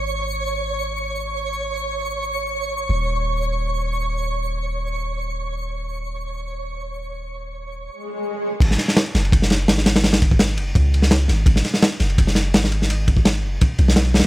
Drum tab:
CC |--------------------------------|--------------------------------|--------------------------------|--------------------------------|
RD |--------------------------------|--------------------------------|--------------------------------|--------------------------------|
SD |--------------------------------|--------------------------------|--------------------------------|--------------------------------|
BD |--------------------------------|--------------------------------|--------------------------------|--------------------------------|

CC |--------------------------------|--------------------------------|x-------------------------------|--------------------------------|
RD |--------------------------------|--------------------------------|x---x---x---x-x-x---x---x---x-x-|x-x-x---x---x---x---x---x---x---|
SD |--------------------------------|--------------------------------|--o-o-o-o---o-----o-o---o-o-o-o-|o-o-----o-------------o-o---o---|
BD |--------------------------------|--------------------------------|o---------------o---------------|----o-o---------o---------------|

CC |--------------------------------|--------------------------------|
RD |x---x---x---x-x-x---x---x---x---|x---x---x-------x---x---x---xx--|
SD |--o-o-o-o---o-----o-o---o-o---o-|--------o-------------o-o---oo--|
BD |o---------------o---------------|----o-o---------o---------------|